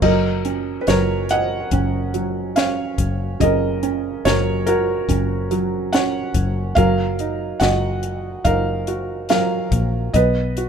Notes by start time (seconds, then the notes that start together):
0.02 F#1 F#3 A#4 D#5, kick, crash
0.45 C#4, closed hi-hat
0.81 B4
0.87 F#1 F#3 A#4 C#5, snare, closed hi-hat
1.29 D#5 F#5, closed hi-hat
1.71 F#1 C#4, kick, closed hi-hat
2.14 F#3, closed hi-hat
2.56 C#4 C#5 F5, snare, closed hi-hat
2.98 F#1, kick, closed hi-hat
3.40 F#1 C#3 A#4 D#5, kick, closed hi-hat
3.83 C#4, closed hi-hat
4.25 F#1 F#3 A#4 C#5, snare, closed hi-hat
4.66 F#4 A#4, closed hi-hat
5.09 F#1 C#4, kick, closed hi-hat
5.51 F#3, closed hi-hat
5.93 C#4 C#5 F#5, snare, closed hi-hat
6.34 F#1, kick, closed hi-hat
6.75 F#1 F#3 A#4 F5, kick, closed hi-hat
7.19 D#4, closed hi-hat
7.60 F#1 F#4 D#5 F#5, snare, closed hi-hat
8.03 closed hi-hat
8.44 F#1 D#4 A#4 F5, kick, closed hi-hat
8.87 F#4, closed hi-hat
9.29 F#3 A#4 F5, snare, closed hi-hat
9.71 A#1, kick, closed hi-hat
10.14 B1 B3 B4 D#5, kick, closed hi-hat
10.57 F#4, closed hi-hat